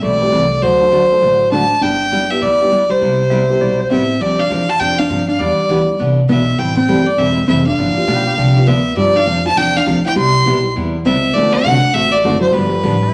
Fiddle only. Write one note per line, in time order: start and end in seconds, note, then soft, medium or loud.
0.03 0.64 D5 loud
0.62 1.51 C5 loud
1.51 1.83 A5 loud
1.82 2.32 G5 loud
2.30 2.43 E5 loud
2.41 2.92 D5 loud
2.91 3.90 C5 medium
3.91 4.22 E5 medium
4.21 4.41 D5 medium
4.39 4.71 F5 medium
4.69 4.81 A5 loud
4.79 5.00 G5 loud
4.98 5.28 F5 medium
5.28 5.40 F5 medium
5.39 5.99 D5 medium
6.28 6.60 E5 medium
6.59 6.76 G5 medium
6.77 7.08 G5 medium
7.06 7.20 D5 medium
7.18 7.47 E5 loud
7.48 7.65 E5 medium
7.66 8.69 F5 loud
8.67 8.96 E5 medium
8.97 9.18 D5 medium
9.17 9.46 F5 loud
9.47 9.58 A5 loud
9.57 9.78 G5 loud
9.76 10.05 F5 loud
10.06 10.16 G5 medium
10.17 10.72 C6 loud
11.05 11.35 E5 loud
11.34 11.54 D5 loud
11.53 11.95 F#5 loud
11.93 12.13 E5 loud
12.12 12.40 D5 medium
12.41 12.54 C5 medium
12.52 13.14 B4 medium